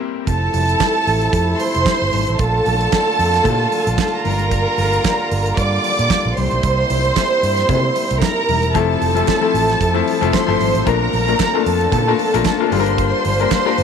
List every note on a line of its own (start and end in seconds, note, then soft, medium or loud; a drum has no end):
0.00 0.29 G3 loud
0.00 0.29 A#3 loud
0.00 0.29 C4 loud
0.00 0.29 E4 loud
0.00 0.29 A#4 loud
0.26 0.47 F1 loud
0.26 2.37 C3 medium
0.26 2.37 F3 medium
0.26 4.21 A3 medium
0.26 2.37 E4 medium
0.26 1.57 A4 medium
0.26 1.57 A5 loud
0.26 kick loud
0.26 closed hi-hat medium
0.53 0.74 F1 loud
0.53 open hi-hat medium
0.53 muted conga medium
0.69 closed hi-hat soft
0.80 kick loud
0.80 snare medium
0.80 clap medium
0.80 closed hi-hat medium
0.80 high conga medium
1.07 1.27 A1 medium
1.07 open hi-hat medium
1.22 closed hi-hat medium
1.33 1.53 F2 loud
1.33 kick loud
1.33 closed hi-hat medium
1.59 2.38 C5 medium
1.59 2.38 C6 loud
1.59 open hi-hat medium
1.59 muted conga medium
1.75 1.84 F1 medium
1.75 closed hi-hat medium
1.85 kick loud
1.85 snare loud
1.85 clap medium
1.85 closed hi-hat medium
1.85 high conga medium
2.02 2.10 G1 medium
2.13 2.24 G#1 medium
2.13 open hi-hat medium
2.13 high conga medium
2.27 2.37 A1 loud
2.27 closed hi-hat soft
2.39 2.59 A#1 loud
2.39 4.23 D3 medium
2.39 8.71 A#3 medium
2.39 6.33 F4 medium
2.39 4.21 A4 medium
2.39 4.21 A5 loud
2.39 kick loud
2.39 closed hi-hat medium
2.39 muted conga soft
2.66 2.86 A#1 loud
2.66 open hi-hat medium
2.66 muted conga medium
2.81 closed hi-hat soft
2.92 kick loud
2.92 snare loud
2.92 clap loud
2.92 closed hi-hat medium
2.92 high conga medium
3.19 3.39 F2 medium
3.19 open hi-hat medium
3.34 snare soft
3.34 closed hi-hat soft
3.44 3.65 A#2 loud
3.44 kick loud
3.44 closed hi-hat medium
3.44 low conga medium
3.72 open hi-hat medium
3.72 muted conga soft
3.87 3.95 A#1 medium
3.87 closed hi-hat medium
3.97 kick loud
3.97 snare loud
3.97 clap medium
3.97 closed hi-hat medium
3.97 high conga medium
4.25 4.64 G1 loud
4.25 6.35 D3 medium
4.25 8.71 G3 medium
4.25 5.55 A#4 medium
4.25 5.55 A#5 medium
4.25 open hi-hat medium
4.25 high conga medium
4.39 closed hi-hat soft
4.51 kick loud
4.51 closed hi-hat medium
4.51 muted conga soft
4.78 4.97 G1 loud
4.78 open hi-hat medium
4.78 muted conga medium
4.93 closed hi-hat soft
5.04 kick loud
5.04 snare loud
5.04 clap medium
5.04 closed hi-hat medium
5.04 high conga medium
5.31 5.51 G1 loud
5.31 open hi-hat medium
5.46 closed hi-hat medium
5.57 5.77 G2 loud
5.57 6.35 D5 medium
5.57 6.35 D6 medium
5.57 kick loud
5.57 closed hi-hat medium
5.84 open hi-hat medium
5.84 muted conga soft
5.99 6.07 A#2 medium
5.99 closed hi-hat medium
6.09 kick loud
6.09 snare loud
6.09 clap medium
6.09 closed hi-hat medium
6.09 high conga medium
6.25 6.34 A#1 medium
6.37 6.48 C2 loud
6.37 10.83 C3 medium
6.37 8.73 E4 medium
6.37 8.18 C5 medium
6.37 8.19 C6 medium
6.37 open hi-hat medium
6.37 high conga medium
6.51 6.60 B1 medium
6.51 closed hi-hat soft
6.63 6.83 C2 loud
6.63 kick loud
6.63 closed hi-hat medium
6.90 7.09 C2 loud
6.90 open hi-hat medium
6.90 muted conga medium
7.05 closed hi-hat soft
7.16 kick loud
7.16 snare loud
7.16 clap medium
7.16 closed hi-hat medium
7.16 high conga medium
7.43 7.62 G2 medium
7.43 open hi-hat medium
7.57 snare soft
7.57 closed hi-hat medium
7.69 7.89 C3 loud
7.69 kick loud
7.69 closed hi-hat medium
7.69 low conga loud
7.96 open hi-hat medium
7.96 muted conga medium
8.11 8.19 C2 medium
8.11 closed hi-hat medium
8.21 8.74 A#4 medium
8.21 8.74 A#5 medium
8.21 kick loud
8.21 snare loud
8.21 clap medium
8.21 closed hi-hat medium
8.21 high conga medium
8.49 8.75 E1 medium
8.49 open hi-hat medium
8.49 high conga medium
8.63 closed hi-hat soft
8.74 8.95 F1 loud
8.74 9.03 F3 medium
8.74 10.85 F3 medium
8.74 9.03 A3 medium
8.74 9.04 C4 medium
8.74 12.68 C4 medium
8.74 9.04 E4 medium
8.74 10.85 E4 medium
8.74 9.04 A4 loud
8.74 10.31 A4 medium
8.74 10.31 A5 loud
8.74 kick loud
8.74 closed hi-hat medium
9.01 9.21 F1 loud
9.01 open hi-hat medium
9.01 muted conga medium
9.15 9.33 F3 medium
9.15 9.34 A3 medium
9.15 9.34 C4 medium
9.15 9.34 E4 medium
9.15 9.34 A4 medium
9.15 closed hi-hat medium
9.28 kick loud
9.28 snare loud
9.28 clap loud
9.28 closed hi-hat medium
9.28 high conga medium
9.41 9.78 F3 medium
9.41 9.78 A3 medium
9.41 9.79 C4 medium
9.41 9.79 E4 medium
9.41 9.79 A4 medium
9.54 9.74 A1 loud
9.54 open hi-hat medium
9.70 snare soft
9.70 closed hi-hat medium
9.81 10.00 F2 loud
9.81 kick loud
9.81 closed hi-hat medium
9.94 10.13 F3 medium
9.94 10.13 A3 medium
9.94 10.13 C4 medium
9.94 10.13 E4 medium
9.94 10.14 A4 medium
10.07 open hi-hat medium
10.07 muted conga soft
10.21 10.30 F1 medium
10.21 10.40 F3 medium
10.21 10.40 A3 medium
10.21 10.40 C4 medium
10.21 10.40 E4 medium
10.21 10.40 A4 loud
10.21 closed hi-hat medium
10.32 10.86 C5 medium
10.32 10.86 C6 medium
10.32 kick loud
10.32 snare loud
10.32 clap medium
10.32 closed hi-hat medium
10.32 high conga medium
10.47 10.57 G1 medium
10.47 10.76 F3 medium
10.47 10.76 A3 medium
10.47 10.76 C4 medium
10.47 10.76 E4 medium
10.47 10.77 A4 medium
10.60 10.71 G#1 medium
10.60 open hi-hat medium
10.60 high conga medium
10.75 10.83 A1 loud
10.75 closed hi-hat medium
10.85 11.06 A#1 loud
10.85 12.70 A#2 medium
10.85 13.83 D3 medium
10.85 11.15 A3 medium
10.85 11.15 A#3 medium
10.85 11.15 D4 medium
10.85 11.15 F4 medium
10.85 13.83 F4 medium
10.85 11.64 A#4 medium
10.85 11.15 A#4 loud
10.85 11.64 A#5 loud
10.85 kick loud
10.85 closed hi-hat medium
10.85 muted conga soft
11.13 11.33 A#1 loud
11.13 open hi-hat medium
11.13 muted conga medium
11.28 11.46 A3 medium
11.28 11.46 A#3 medium
11.28 11.46 D4 medium
11.28 11.46 F4 medium
11.28 11.46 A#4 medium
11.28 closed hi-hat soft
11.39 kick loud
11.39 snare loud
11.39 clap medium
11.39 closed hi-hat medium
11.39 high conga medium
11.54 11.90 A3 medium
11.54 11.91 A#3 medium
11.54 11.91 D4 medium
11.54 11.91 F4 medium
11.54 11.91 A4 medium
11.66 11.86 F2 medium
11.66 12.70 A4 medium
11.66 12.70 A5 medium
11.66 open hi-hat medium
11.81 closed hi-hat soft
11.92 12.12 A#2 loud
11.92 kick loud
11.92 closed hi-hat medium
11.92 low conga medium
12.07 12.25 A3 medium
12.07 12.25 A#3 medium
12.07 12.26 D4 medium
12.07 12.26 F4 medium
12.07 12.26 A#4 loud
12.19 open hi-hat medium
12.19 muted conga soft
12.33 12.43 A#1 medium
12.33 12.52 A3 loud
12.33 12.52 A#3 medium
12.33 12.52 D4 medium
12.33 12.52 F4 loud
12.33 12.52 A#4 loud
12.33 closed hi-hat medium
12.44 kick loud
12.44 snare loud
12.44 clap medium
12.44 closed hi-hat medium
12.44 high conga medium
12.60 12.72 A3 medium
12.60 12.70 A#3 medium
12.60 12.71 D4 medium
12.60 12.71 F4 medium
12.60 12.73 A#4 medium
12.71 13.11 G1 loud
12.71 13.25 G3 medium
12.71 13.83 G3 medium
12.71 13.25 A#3 medium
12.71 13.83 A#3 medium
12.71 13.25 D4 medium
12.71 13.25 F4 medium
12.71 12.80 A4 medium
12.71 13.83 C5 medium
12.71 13.83 C6 medium
12.71 open hi-hat medium
12.71 high conga medium
12.80 13.29 A#4 loud
12.86 closed hi-hat soft
12.98 kick loud
12.98 closed hi-hat medium
12.98 muted conga soft
13.25 13.45 G1 loud
13.25 open hi-hat medium
13.25 muted conga medium
13.39 13.57 G3 medium
13.39 13.58 A#3 medium
13.39 13.58 D4 medium
13.39 13.58 F4 medium
13.39 13.58 A#4 medium
13.39 closed hi-hat soft
13.51 kick loud
13.51 snare loud
13.51 clap medium
13.51 closed hi-hat medium
13.51 high conga medium
13.65 13.83 G3 medium
13.65 13.83 A#3 medium
13.65 13.83 D4 medium
13.65 13.83 F4 medium
13.65 13.83 A#4 loud
13.78 13.83 G1 medium
13.78 open hi-hat medium